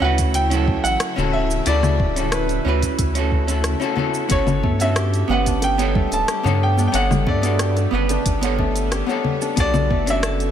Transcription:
Already playing: C#3 A3 E4 E5
0.00 D2 C#4 E4 F#4 F#5
0.04 B4
0.18 kick, closed hi-hat, cabasa
0.34 G5, closed hi-hat, cabasa
0.50 F#3 C#4 E4 A4, closed hi-hat, cabasa
0.68 kick
0.84 A1 F#5, closed hi-hat, cabasa
1.00 cross-stick, closed hi-hat, cabasa
1.16 D1 C#4 E4 F#4 A4, low conga, cabasa
1.33 E5
1.51 cabasa
1.65 D2 C#3 E4 F#4 A4 D5, closed hi-hat, cabasa
1.83 cross-stick, low conga, cabasa
2.00 D1, kick
2.16 C#4 E4 F#4 A4, closed hi-hat, cabasa
2.32 B4, cross-stick, closed hi-hat, cabasa
2.49 closed hi-hat, cabasa
2.65 D2 C#4 E4 F#4 B4
2.82 kick, closed hi-hat, cabasa
2.99 D2, kick, closed hi-hat, cabasa
3.15 C#4 E4 F#4 A4, closed hi-hat, cabasa
3.32 kick
3.47 C#4 E4 F#4 A4, closed hi-hat, cabasa
3.64 cross-stick, closed hi-hat, cabasa
3.80 C#4 E4 F#4 A4, cabasa
3.96 G3 B3 C#4 F#4 A4, low conga
4.14 cabasa
4.29 G1 B3 C#4 F#4 A4 C#5, kick, closed hi-hat, cabasa
4.47 high bongo, low conga, cabasa
4.63 G2 A3, kick, high conga
4.79 B3 C#4 F#4 A4 E5, closed hi-hat, high bongo, cabasa
4.96 G4, cross-stick, closed hi-hat, cabasa
5.14 closed hi-hat, cabasa
5.28 G1 B3 C#4 F#5, high bongo, high conga
5.32 B4
5.46 D4, kick, closed hi-hat, cabasa
5.62 G5, closed hi-hat, high bongo, cabasa
5.78 B3 A4 C#5 G5, closed hi-hat, cabasa
5.95 A3, kick, low conga
6.12 D1 A5, closed hi-hat, high bongo, cabasa
6.28 G4, cross-stick, closed hi-hat, cabasa
6.43 G2 B3 A4 C#5 F#5, high bongo, low conga, cabasa
6.63 G5
6.77 D4, high conga, cabasa
6.88 G5
6.92 G1 B3 C#5 F#5, closed hi-hat, high bongo, cabasa
6.96 A4
7.11 cross-stick, low conga, cabasa
7.27 G2 A3 D5, kick, high bongo, high conga
7.42 B3 F#4 A4 D5, closed hi-hat, cabasa
7.59 G4, cross-stick, closed hi-hat, cabasa
7.76 closed hi-hat, high bongo, cabasa
7.91 G1 C#3 B3 B4 F#5
8.09 D4, closed hi-hat, high bongo, cabasa
8.26 G1, kick, closed hi-hat, cabasa
8.41 B3 A4 C#5 F#5, closed hi-hat, cabasa
8.59 A3, kick, high bongo
8.76 closed hi-hat, cabasa
8.91 G4, cross-stick, closed hi-hat, high bongo, cabasa
9.06 B3 C#5 F#5, cabasa
9.11 A4
9.24 low conga
9.41 D4, high bongo, cabasa
9.56 B1 D3 A3 B3 D4 F#4 A4, kick, closed hi-hat, cabasa
9.60 D5
9.74 high bongo, low conga, cabasa
9.90 F#1 A3, kick, high conga
10.06 C#4 D4 F#4 A4, closed hi-hat, cabasa
10.10 E5
10.23 A4, cross-stick, closed hi-hat, high bongo, cabasa
10.40 closed hi-hat, cabasa

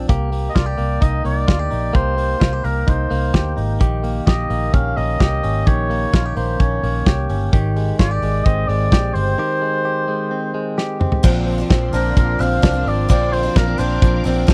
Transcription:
Already playing: F3 D4
0.09 C2 A#3 G4, kick, closed hi-hat
0.32 A#3, open hi-hat
0.49 D#5
0.55 C2 F4 D5, kick, snare, closed hi-hat
0.66 G4
0.78 C2 A#3, open hi-hat
1.01 C2 D#4 D#5, kick, closed hi-hat
1.24 C2 A#3 D5, open hi-hat
1.48 D2 F4, kick, snare, closed hi-hat
1.59 G4
1.71 A#1 D#4, open hi-hat
1.93 C2 A#3 G4 C5, kick, closed hi-hat
2.17 A#3, open hi-hat
2.40 C2 F4, kick, snare, closed hi-hat
2.53 G4
2.64 C2 A#3 A#4, open hi-hat
2.87 C2 D#4 C5, kick, closed hi-hat
3.11 C2 A#3, open hi-hat
3.34 D2 G4, kick, snare, closed hi-hat
3.57 G#1 D#4, open hi-hat
3.80 A#1 D#3 G4, kick, closed hi-hat
4.04 A#3, open hi-hat
4.26 A#1 G4 D#5, kick, snare, closed hi-hat
4.50 A#1 A#3, open hi-hat
4.73 A#1 C#4 F5, kick, closed hi-hat
4.97 A#1 A#3 D#5, open hi-hat
5.20 C2 G4, kick, snare, closed hi-hat
5.43 G#1 C#4, open hi-hat
5.67 A#1 D#3 G4 C#5, kick, closed hi-hat
5.90 A#3, open hi-hat
6.13 A#1 F4, kick, snare, closed hi-hat
6.26 G4
6.36 A#1 A#3 C5, open hi-hat
6.60 A#1 C#4 C#5, kick, closed hi-hat
6.83 A#1 A#3, open hi-hat
7.06 C2 G4, kick, snare, closed hi-hat
7.29 G1 C#4, open hi-hat
7.53 G#1 D#3 G4, kick, closed hi-hat
7.76 G#3, open hi-hat
7.99 G#1 F4 D5, kick, snare, closed hi-hat
8.11 G4
8.22 G#1 G#3, open hi-hat
8.44 G#1 C4 D#5, kick, closed hi-hat
8.67 G#1 G#3 D5, open hi-hat
8.92 A#1 G4, kick, snare, closed hi-hat
9.14 G1 C4 C5, open hi-hat
9.38 D#3 G4
9.62 G#3
9.85 G4
10.08 G#3
10.31 C4
10.54 G#3
10.78 G4, snare
11.00 C4, mid tom
11.12 floor tom
11.23 A#1 A#2 D3 F3 C4 D4 A#4 D5 F5 C6, kick, crash
11.47 F3, open hi-hat
11.58 F3 C4 D4
11.70 A#1 C4, kick, snare, hi-hat pedal, ride
11.93 A#1 D3 F3 C4 D4 A#4, open hi-hat
12.17 A#1 F3 A#4, kick, hi-hat pedal, ride
12.39 A#1 D3 F3 C4 D4 F5, open hi-hat
12.62 C2 D3 F3 C4 D4, kick, snare, hi-hat pedal, ride
12.73 F3 C4 D4
12.86 G#1 C4 D5, open hi-hat
13.09 A#1 A#2 D3 F3 C4 D4 D5 D6, kick, hi-hat pedal, ride
13.32 F3 C5, open hi-hat
13.43 F3 C4 D4
13.56 A#1 A#3 A#4, kick, snare, hi-hat pedal, ride
13.68 C4
13.78 A#1 D3 F3 C4 D4 C5, open hi-hat
14.02 A#1 F3, kick, hi-hat pedal, ride
14.24 A#1 D3 F3 C4 D4, open hi-hat
14.47 C2 D3 F3 C4 D4, kick, snare, hi-hat pedal, ride

